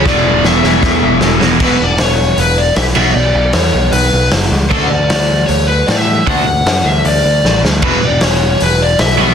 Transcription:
<<
  \new Staff \with { instrumentName = "Lead electric guitar" } { \time 4/4 \key e \mixolydian \tempo 4 = 154 d''4 e''2~ e''8 r8 | b'8 d''8 cis''4 b'8 d''8 e''8 e''8 | d''4 cis''4 b'4 r4 | a'8 d''4. cis''8 b'8 d''16 e''8. |
fis''8 fis''4 e''8 d''4. r8 | b'8 d''8 cis''4 b'8 d''8 e''8 e''8 | }
  \new Staff \with { instrumentName = "Distorted electric guitar" } { \clef bass \time 4/4 \key e \mixolydian <e, b, e>4. <e, b, e>2~ <e, b, e>8 | <e, b, e>8 r2. <b, fis b>8 | r1 | <d a d'>8 r2. r8 |
<d a d'>8 r2. r8 | <e, b, e>8 r2. <b, fis b>8 | }
  \new Staff \with { instrumentName = "Overdriven electric guitar" } { \clef bass \time 4/4 \key e \mixolydian <e, b, e>2.~ <e, b, e>8 <e, b, e>8 | <e, b, e>8 r2. <b, fis b>8 | r1 | <d a d'>8 r2. r8 |
<d a d'>8 r2. r8 | <e, b, e>8 r2. <b, fis b>8 | }
  \new Staff \with { instrumentName = "Picked electric bass" } { \clef bass \time 4/4 \key e \mixolydian e,,8 e,,8 e,,8 e,,8 e,8 e,,8 e,,8 e,,8 | e,,8 e,,8 e,,4 e,,4 b,,8 b,,8 | b,,8 b,,8 e,8 b,,8 b,,8 b,,8 fis,,8 cis,8 | d,8 d,8 d,4 d,4 a,4 |
d,8 d,8 fis,8 d,8 d,8 d,8 a,,8 d,8 | e,,8 e,,8 e,,4 e,,4 b,,8 b,,8 | }
  \new DrumStaff \with { instrumentName = "Drums" } \drummode { \time 4/4 <bd sn>4 sn8 sn8 <bd sn>4 sn8 sn8 | <cymc bd>4 <hho sn>4 hho4 <hho sn>8 cymc8 | r4 <hho sn>4 hho4 <hho sn>4 | <cymc bd>4 <hho sn>4 hho4 <hho sn>4 |
<hho bd>4 <hho sn>4 hho4 sn8 sn8 | <cymc bd>4 <hho sn>4 hho4 <hho sn>4 | }
>>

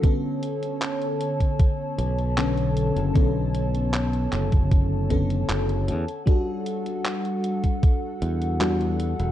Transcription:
<<
  \new Staff \with { instrumentName = "Ambient pad" } { \time 4/4 \key b \minor \tempo 4 = 77 <cis'' a''>1~ | <cis'' a''>2.~ <cis'' a''>8 <a' fis''>8~ | <a' fis''>1 | }
  \new Staff \with { instrumentName = "FM electric piano" } { \time 4/4 \key b \minor <d b cis' a'>2. <d b cis' a'>4 | <d b cis' a'>2~ <d b cis' a'>8 <d b cis' a'>4 r8 | <g d' fis' a'>2. <g d' fis' a'>4 | }
  \new Staff \with { instrumentName = "Fingered electric bass" } { \clef bass \time 4/4 \key b \minor r2 r8 b,,4~ b,,16 fis,,16 | b,,4. fis,,4. fis,,8 e,16 r16 | r2 r8 e,4~ e,16 e,,16 | }
  \new DrumStaff \with { instrumentName = "Drums" } \drummode { \time 4/4 <hh bd>8 hh16 hh16 <hc hh>16 hh16 hh16 <hh bd>16 <hh bd>8 hh16 hh16 <hc hh>16 hh16 hh16 hh16 | <hh bd>8 hh16 hh16 <hc hh>16 hh16 <hc hh>16 <hh bd>16 <hh bd>8 <hh bd>16 hh16 <hc hh>16 hh16 hh16 hh16 | <hh bd>8 hh16 hh16 <hc hh>16 hh16 hh16 <hh bd>16 <hh bd>8 hh16 hh16 <hc hh>16 hh16 hh16 hh16 | }
>>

